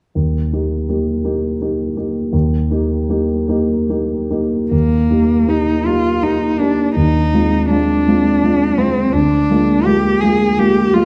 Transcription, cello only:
4.72 A#3
5.49 D#4
5.86 F4
6.23 D#4
6.59 D4
6.96 D#4
7.70 D4
8.78 C4
9.13 D4
9.86 G4
10.21 G#4
10.59 G4
10.94 F4

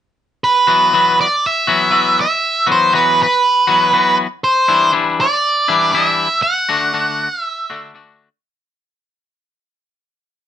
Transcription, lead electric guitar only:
0.44 B4
1.21 D5
1.46 E5
2.21 E5
2.72 C5
2.95 B4
3.23 B4
4.44 C5
5.21 D5
5.92 D#5
6.09 E5
6.43 F#5
7.42 E5

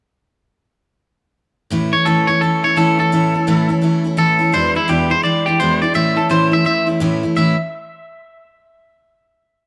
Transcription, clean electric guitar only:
1.93 C#5
2.05 A4
2.27 C#5
2.41 A4
2.64 C#5
2.77 A4
3.00 A4
4.18 A4
4.54 C5
4.76 E4
4.89 G4
5.11 C5
5.24 D5
5.46 G4
5.60 C5
5.82 D5
5.95 E5
6.17 A4
6.31 C5
6.53 E5
6.66 E5
7.37 E5

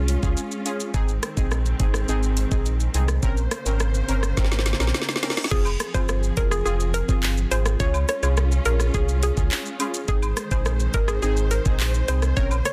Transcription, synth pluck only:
5.51 G#4
5.94 C5
6.37 A#4
6.51 G#4
6.65 G#4
6.94 A#4
7.51 C5
7.80 C#5
8.09 C#5
8.23 C#5
8.66 A#4
8.95 G#4
9.23 G#4
10.09 G#4
10.52 C5
10.94 A#4
11.08 G#4
11.22 G#4
11.51 A#4
12.08 C5
12.37 C#5
12.65 C#5

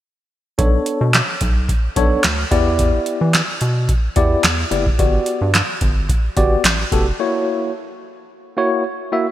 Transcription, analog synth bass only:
0.59 B1
1.01 B2
1.41 B1
1.97 B1
2.24 D2
2.51 E2
3.21 E3
3.61 B2
4.16 E2
4.44 E2
4.71 F#1
4.99 G1
5.41 G2
5.81 G1
6.37 G1
6.64 A1
6.92 F1

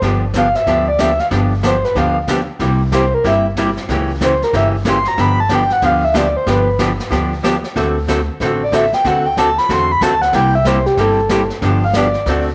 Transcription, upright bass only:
0.02 G1
0.67 D2
1.31 G1
1.95 D2
2.60 C2
3.24 G1
3.89 C#2
4.53 G1
5.18 G1
5.82 D2
6.47 G1
7.11 D2
7.76 D2
8.40 A1
9.05 D2
9.69 E2
10.01 D2
10.33 C2
10.97 G1
11.62 G1
12.26 D2

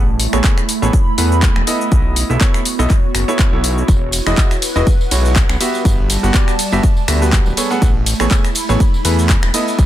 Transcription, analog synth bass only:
Already playing: A1
0.33 A1
0.82 A1
1.18 E2
1.56 E1
1.92 B1
2.30 B1
2.79 B1
3.15 F#1
3.53 B1
3.88 E1
4.26 E1
4.76 E1
5.11 B1
5.49 B1
5.85 G1
6.23 G1
6.72 G1
7.08 D2
7.46 D1
7.82 A1
8.20 A1
8.69 A1
9.05 E2
9.43 E1
9.79 B1

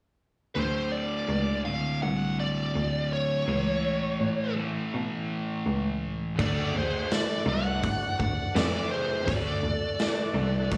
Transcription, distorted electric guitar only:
0.55 D2 A2 D3
1.65 D2 A2 D3
3.46 A2 E3 A3
4.55 A2 E3 A3
6.37 D2
6.74 D2
7.45 C3
7.82 D2
8.19 D2
8.54 F2
9.26 D2
9.62 D2
10.33 C3
10.71 D2

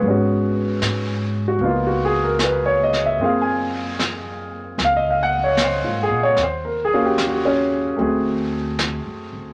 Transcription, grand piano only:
Already playing: B4
0.00 G#3
0.04 B3 C#4
0.10 F#4
1.48 F#4
1.61 A#3 B3 D#4
1.65 F4
1.87 F#4
2.05 G#4
2.24 A#4
2.44 B4
2.66 C#5
2.83 D#5
3.06 E5
3.21 A#3 C4 F4 G#4 F5
3.41 G#5
4.84 F5
4.96 D#5
5.10 F5
5.23 F#5
5.44 C#5
5.64 C5
5.84 F4
6.03 G#4
6.23 C#5
6.43 C5
6.65 A#4
6.85 G#4
6.93 A#3 C#4 F4 F#4
7.05 G4
7.28 F#4
7.45 C#4
7.96 A3 C4 F#4
8.01 G#4

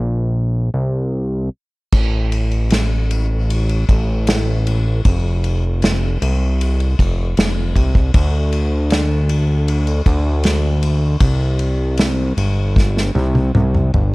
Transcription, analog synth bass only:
Already playing: A#1
0.74 C2
1.93 A1
3.89 A1
5.06 F1
6.22 C2
6.99 F1
7.38 F1
7.75 C2
8.14 D2
10.06 D2
11.21 C2
12.37 G1
13.15 C2
13.55 C2
13.94 G1

